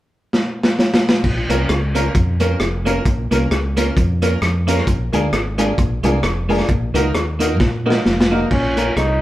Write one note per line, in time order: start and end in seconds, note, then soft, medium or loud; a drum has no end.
0.33 snare medium
0.63 snare medium
0.79 snare medium
0.94 snare loud
1.09 snare medium
1.24 1.46 A#1 medium
1.24 kick loud
1.24 crash medium
1.49 1.66 C2 medium
1.49 1.64 A#3 medium
1.49 1.62 A#3 medium
1.49 1.64 C#4 medium
1.49 1.63 C#4 medium
1.49 1.64 F4 medium
1.49 1.63 F4 medium
1.49 1.64 A#4 loud
1.49 1.63 A#4 medium
1.49 closed hi-hat medium
1.69 2.08 C#2 medium
1.69 cross-stick loud
1.69 closed hi-hat medium
1.95 2.09 A#3 medium
1.95 2.08 A#3 medium
1.95 2.09 C#4 medium
1.95 2.08 C#4 medium
1.95 2.09 F4 medium
1.95 2.08 F4 medium
1.95 2.10 A#4 loud
1.95 2.08 A#4 medium
1.95 closed hi-hat medium
2.15 2.53 F2 loud
2.15 kick loud
2.15 closed hi-hat medium
2.40 2.54 A#3 medium
2.40 2.53 A#3 medium
2.40 2.55 C#4 medium
2.40 2.53 C#4 medium
2.40 2.55 F4 medium
2.40 2.54 F4 medium
2.40 2.55 A#4 loud
2.40 2.54 A#4 medium
2.40 closed hi-hat medium
2.60 2.99 F1 medium
2.60 cross-stick loud
2.60 closed hi-hat medium
2.85 3.00 A#3 medium
2.85 2.98 A#3 medium
2.85 3.00 C#4 medium
2.85 2.99 C#4 medium
2.85 3.00 F4 medium
2.85 2.99 F4 medium
2.85 3.00 A#4 loud
2.85 2.99 A#4 medium
2.85 closed hi-hat medium
3.05 3.27 A#1 loud
3.05 kick medium
3.05 closed hi-hat medium
3.31 3.48 C2 medium
3.31 3.45 A#3 medium
3.31 3.44 A#3 medium
3.31 3.44 C#4 medium
3.31 3.46 C#4 medium
3.31 3.46 F4 medium
3.31 3.44 F4 medium
3.31 3.46 A#4 medium
3.31 3.45 A#4 medium
3.31 closed hi-hat medium
3.51 3.90 C#2 medium
3.51 cross-stick loud
3.51 closed hi-hat medium
3.77 3.89 A#3 medium
3.77 3.91 A#3 loud
3.77 3.90 C#4 medium
3.77 3.91 C#4 medium
3.77 3.90 F4 medium
3.77 3.91 F4 medium
3.77 3.90 A#4 medium
3.77 3.92 A#4 medium
3.77 closed hi-hat loud
3.96 4.35 F2 medium
3.96 kick loud
3.96 closed hi-hat medium
4.22 4.36 A#3 medium
4.22 4.35 A#3 medium
4.22 4.36 C#4 medium
4.22 4.35 C#4 medium
4.22 4.37 F4 medium
4.22 4.35 F4 medium
4.22 4.37 A#4 loud
4.22 4.36 A#4 medium
4.22 closed hi-hat medium
4.42 4.80 F2 medium
4.42 cross-stick loud
4.42 closed hi-hat medium
4.67 4.80 A#3 medium
4.67 4.82 A#3 medium
4.67 4.82 C#4 medium
4.67 4.81 C#4 medium
4.67 4.82 F4 medium
4.67 4.81 F4 medium
4.67 4.82 A#4 loud
4.67 4.81 A#4 medium
4.67 closed hi-hat medium
4.77 cross-stick medium
4.87 5.09 A#1 medium
4.87 kick loud
4.87 closed hi-hat medium
5.13 5.30 D2 medium
5.13 5.26 G#3 medium
5.13 5.27 A#3 medium
5.13 5.27 D4 medium
5.13 5.26 D4 medium
5.13 5.27 F4 medium
5.13 5.26 F4 medium
5.13 5.28 G#4 loud
5.13 5.27 A#4 loud
5.13 closed hi-hat medium
5.33 5.71 G#1 medium
5.33 cross-stick loud
5.33 closed hi-hat medium
5.58 5.71 G#3 medium
5.58 5.72 A#3 loud
5.58 5.73 D4 medium
5.58 5.71 D4 medium
5.58 5.73 F4 medium
5.58 5.72 F4 loud
5.58 5.73 G#4 loud
5.58 5.72 A#4 medium
5.58 closed hi-hat medium
5.78 6.00 A#1 medium
5.78 kick loud
5.78 closed hi-hat medium
6.03 6.20 C2 medium
6.03 6.16 G#3 medium
6.03 6.18 A#3 medium
6.03 6.18 D4 medium
6.03 6.17 D4 medium
6.03 6.18 F4 medium
6.03 6.17 F4 medium
6.03 6.19 G#4 loud
6.03 6.17 A#4 medium
6.03 closed hi-hat medium
6.23 6.62 F1 medium
6.23 cross-stick loud
6.23 closed hi-hat medium
6.49 6.62 G#3 medium
6.49 6.63 A#3 loud
6.49 6.64 D4 medium
6.49 6.62 D4 medium
6.49 6.64 F4 loud
6.49 6.62 F4 loud
6.49 6.64 G#4 loud
6.49 6.63 A#4 medium
6.49 open hi-hat soft
6.59 cross-stick medium
6.69 6.91 A#1 loud
6.69 kick loud
6.69 closed hi-hat medium
6.94 7.11 C#2 medium
6.94 7.09 A#3 medium
6.94 7.07 A#3 medium
6.94 7.09 D#4 medium
6.94 7.08 D#4 medium
6.94 7.09 F#4 medium
6.94 7.08 F#4 medium
6.94 7.09 A#4 loud
6.94 7.08 A#4 medium
6.94 closed hi-hat medium
7.14 7.60 D#2 medium
7.14 cross-stick loud
7.14 closed hi-hat medium
7.39 7.53 A#3 medium
7.39 7.54 A#3 medium
7.39 7.53 D#4 medium
7.39 7.55 D#4 medium
7.39 7.53 F#4 medium
7.39 7.55 F#4 medium
7.39 7.53 A#4 loud
7.39 7.55 A#4 loud
7.39 closed hi-hat loud
7.60 7.99 A#2 loud
7.60 kick loud
7.60 snare soft
7.86 8.00 A#3 medium
7.86 7.99 A#3 medium
7.86 8.00 D#4 medium
7.86 7.99 D#4 medium
7.86 8.00 F#4 medium
7.86 7.99 F#4 medium
7.86 8.00 A#4 medium
7.86 7.99 A#4 medium
7.90 snare medium
8.05 8.44 F1 medium
8.05 snare medium
8.21 snare medium
8.31 8.45 A#3 medium
8.31 8.44 A#3 medium
8.31 8.50 A#3 medium
8.31 8.46 D#4 medium
8.31 8.44 D#4 medium
8.31 8.46 F#4 medium
8.31 8.45 F#4 medium
8.31 8.46 A#4 medium
8.31 8.45 A#4 medium
8.51 8.90 A#1 loud
8.51 8.94 C#4 loud
8.51 kick loud
8.51 crash medium
8.77 8.91 A#3 medium
8.77 8.90 A#3 medium
8.77 8.91 C#4 medium
8.77 8.90 C#4 medium
8.77 8.91 F4 medium
8.77 8.90 F4 medium
8.77 8.92 A#4 medium
8.77 8.90 A#4 loud
8.77 closed hi-hat medium
8.96 9.18 C2 medium
8.96 9.22 D#4 loud
8.96 cross-stick medium
8.96 closed hi-hat medium